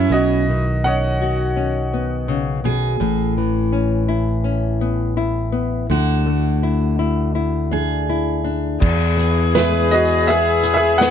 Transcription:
Already playing: nylon-string guitar C#4 E4, steel-string acoustic guitar C#4
0.00 steel-string acoustic guitar E4
0.10 fingered electric bass B1, nylon-string guitar B2, upright piano F#4 D#5
0.49 nylon-string guitar D#3
0.84 nylon-string guitar C#4, upright piano C#5 D#5 F#5
1.21 nylon-string guitar F#4
1.56 nylon-string guitar C#4
1.93 nylon-string guitar B3
2.28 nylon-string guitar C#3
2.64 nylon-string guitar B2, steel-string acoustic guitar G#4
3.00 fingered electric bass A1, nylon-string guitar A2
3.37 nylon-string guitar E3
3.72 nylon-string guitar C#4
4.08 nylon-string guitar E4
4.44 nylon-string guitar C#4
4.81 nylon-string guitar B3
5.17 nylon-string guitar E4
5.52 nylon-string guitar B3
5.90 fingered electric bass D2, nylon-string guitar D3, steel-string acoustic guitar F#4
6.26 nylon-string guitar A3
6.63 nylon-string guitar E4
6.99 nylon-string guitar E4
7.35 nylon-string guitar E4
7.71 nylon-string guitar D4, steel-string acoustic guitar G#4
8.09 nylon-string guitar E4
8.44 nylon-string guitar D4
8.80 nylon-string guitar E2, fingered electric bass E2, string section E3 E4 G#4 B4, viola G#4, kick, crash
9.17 nylon-string guitar E3, closed hi-hat
9.54 nylon-string guitar G#3, upright piano E4 B4, steel-string acoustic guitar B4, snare, closed hi-hat
9.91 upright piano F#4 D#5, nylon-string guitar G#4, closed hi-hat
10.27 nylon-string guitar B3, upright piano G#4 E5, closed hi-hat
10.63 nylon-string guitar E3, closed hi-hat
10.74 upright piano G#4 E5
10.98 nylon-string guitar B3, upright piano B4 F#5, snare, closed hi-hat

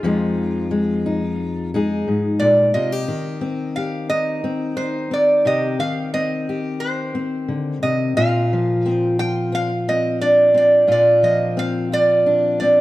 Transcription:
Already playing: resonator guitar played with a steel bar F4
0.03 steel-string acoustic guitar F2 F3 G#3 D#4
0.71 steel-string acoustic guitar G#3
1.06 steel-string acoustic guitar D#4
1.74 steel-string acoustic guitar G#3 D#4 G#4
2.08 steel-string acoustic guitar G#2
2.40 steel-string acoustic guitar A#2, resonator guitar played with a steel bar D5
2.74 steel-string acoustic guitar C3 F4, resonator guitar played with a steel bar D#5
2.92 steel-string acoustic guitar G4
3.08 steel-string acoustic guitar D#3
3.41 steel-string acoustic guitar C4
3.76 steel-string acoustic guitar G4, resonator guitar played with a steel bar F5
4.10 steel-string acoustic guitar D#4, resonator guitar played with a steel bar D#5
4.44 steel-string acoustic guitar C4
4.77 steel-string acoustic guitar D#4, resonator guitar played with a steel bar C5
5.11 steel-string acoustic guitar C4, resonator guitar played with a steel bar D5
5.45 steel-string acoustic guitar C3 G4, resonator guitar played with a steel bar D#5
5.79 steel-string acoustic guitar D#3, resonator guitar played with a steel bar F5
6.14 steel-string acoustic guitar C4, resonator guitar played with a steel bar D#5
6.49 steel-string acoustic guitar G4
6.80 resonator guitar played with a steel bar C5
7.15 steel-string acoustic guitar C4
7.48 steel-string acoustic guitar D3
7.83 steel-string acoustic guitar C3, resonator guitar played with a steel bar D#5
8.17 steel-string acoustic guitar A#2 F4, resonator guitar played with a steel bar F5
8.53 steel-string acoustic guitar F3
8.86 steel-string acoustic guitar C4
8.91 resonator guitar played with a steel bar D#5
9.19 steel-string acoustic guitar F4, resonator guitar played with a steel bar G5
9.52 steel-string acoustic guitar C4, resonator guitar played with a steel bar F5
9.88 steel-string acoustic guitar C4, resonator guitar played with a steel bar D#5
10.21 steel-string acoustic guitar D4, resonator guitar played with a steel bar D5
10.54 steel-string acoustic guitar C4, resonator guitar played with a steel bar D5
10.87 steel-string acoustic guitar A#2 F4
10.92 resonator guitar played with a steel bar D5
11.23 steel-string acoustic guitar F3, resonator guitar played with a steel bar D#5
11.57 steel-string acoustic guitar C4, resonator guitar played with a steel bar F5
11.92 steel-string acoustic guitar F4, resonator guitar played with a steel bar D5
12.26 steel-string acoustic guitar D4
12.60 steel-string acoustic guitar C4, resonator guitar played with a steel bar D5

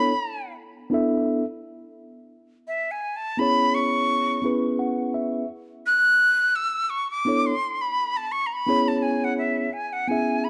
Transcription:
Already playing: tine electric piano B3 D4 E4 A4 C#5, flute B5
0.90 tine electric piano B3 D4 E4 A4
0.94 tine electric piano E5
2.67 flute E5
2.91 flute G#5
3.16 flute A5
3.37 tine electric piano B3 C#4 E4 G#4, flute B5
3.41 tine electric piano C#5
3.74 flute C#6
4.42 tine electric piano B3 C#4 E4 G#4 B4
4.79 tine electric piano F#5
5.14 tine electric piano E5
5.86 flute F#6
6.55 flute E6
6.90 flute C#6
7.11 flute D6
7.25 tine electric piano B3 D4 E4 A4 C#5
7.46 flute C6
7.81 flute B5
8.17 flute A5
8.32 flute C#6
8.46 flute A#5
8.53 flute B5
8.66 tine electric piano B3 C#4 E4 G#4 C#5
8.88 flute A5
9.02 flute G#5
9.24 flute F#5
9.38 flute E5
9.73 flute G#5
9.93 flute F#5
10.08 tine electric piano B3 C#4 E4 G#4 E5, flute G#5
10.44 flute B5

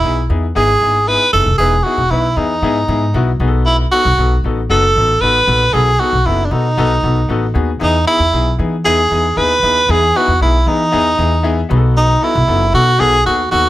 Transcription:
Already playing: tenor saxophone E4
0.03 upright bass B1, upright piano B3 D#4 E4 G#4
0.29 upright bass E2, upright piano B3 D#4 E4 G#4
0.55 upright bass G#1, upright piano B3 D#4 E4 G#4, tenor saxophone G#4
0.81 upright bass G#1, upright piano B3 D#4 E4 G#4
1.07 upright piano B3 D#4 E4 G#4, tenor saxophone B4
1.33 upright bass F#1, upright piano B3 D#4 E4 G#4, tenor saxophone A4
1.46 upright bass E1
1.58 upright bass E1, upright piano B3 D#4 E4 B4, tenor saxophone G#4
1.84 upright piano B3 D#4 E4 G#4, tenor saxophone F#4
1.98 upright bass E1
2.10 upright bass B1, upright piano B3 D#4 E4 B4, tenor saxophone E4
2.36 upright bass E2, upright piano B3 D#4 E4 G#4, tenor saxophone D#4
2.62 upright bass G#2, upright piano B3 D#4 E4 G#4
2.88 upright bass G#2, upright piano B3 D#4 E4 G#4
3.14 upright bass B1, upright piano B3 D#4 E4 F#4
3.40 upright bass B1, upright piano B3 D#4 F#4 G#4
3.47 upright piano A4
3.65 tenor saxophone E4
3.91 upright piano B3 D#4 F#4 A4, tenor saxophone F#4
4.05 upright bass B1
4.18 upright bass B1, upright piano B3 D#4 F#4 A4
4.44 upright bass A1, upright piano B3 D#4 F#4 A4
4.70 upright bass F#1, upright piano B3 D#4 F#4 A4, tenor saxophone A4
4.96 upright bass A1, upright piano B3 D#4 F#4 A4
5.21 upright bass A1, upright piano B3 D#4 F#4 A4, tenor saxophone B4
5.47 upright bass A#1, upright piano B3 D#4 F#4 A4
5.73 upright bass B1, upright piano B3 D#4 F#4 A4, tenor saxophone G#4
5.99 upright piano B3 D#4 F#4 A4, tenor saxophone F#4
6.13 upright bass B1
6.25 upright bass F#1, upright piano B3 D#4 F#4 A4, tenor saxophone E4
6.45 tenor saxophone D4
6.51 upright bass B2, upright piano B3 D#4 F#4 A4, tenor saxophone D#4
6.77 upright bass B1, upright piano B3 D#4 F#4 A4
7.03 upright bass B1, upright piano B3 D#4 F#4 A4
7.29 upright bass A1, upright piano B3 D#4 F#4 A4
7.54 upright bass D#2, upright piano B3 D#4 F#4 G#4
7.79 upright bass E2, upright piano B3 D#4 E4 G#4, tenor saxophone D#4
8.06 upright piano B3 D#4 E4 G#4, tenor saxophone E4
8.20 upright bass E2
8.33 upright bass B1, upright piano B3 D#4 E4 G#4
8.58 upright bass E3, upright piano B3 D#4 E4 G#4
8.84 upright bass E2, upright piano B3 D#4 E4 G#4, tenor saxophone G#4
9.10 upright bass E2, upright piano B3 D#4 E4 G#4
9.36 upright bass D#2, upright piano B3 D#4 E4 G#4, tenor saxophone B4
9.62 upright bass D#2, upright piano B3 D#4 E4 G#4
9.88 upright bass E2, upright piano B3 D#4 E4 G#4, tenor saxophone G#4
10.15 upright piano B3 D#4 E4 B4, tenor saxophone F#4
10.28 upright bass E2
10.40 upright bass B1, upright piano B3 D#4 E4 G#4, tenor saxophone E4
10.66 upright bass E3, upright piano B3 D#4 E4 G#4, tenor saxophone D#4
10.92 upright bass E2, upright piano B3 D#4 E4 G#4
11.17 upright bass E2, upright piano B3 D#4 E4 G#4
11.43 upright piano B3 D#4 E4 G#4 E5
11.69 upright bass B1, upright piano B3 D#4 F#4 G#4 B5
11.77 upright piano A4
11.97 tenor saxophone D#4
12.21 upright piano B3 D#4 F#4 A4, tenor saxophone E4
12.35 upright bass B1
12.47 upright bass F#1, upright piano B3 D#4 F#4 A4
12.73 upright bass B2, upright piano B3 D#4 F#4 A4, tenor saxophone F#4
12.98 upright bass B1, upright piano B3 D#4 F#4 A4, tenor saxophone G#4
13.24 upright bass D#2, upright piano B3 D#4 F#4 A4, tenor saxophone F#4
13.51 upright bass D#2, upright piano B3 D#4 F#4 A4, tenor saxophone F#4

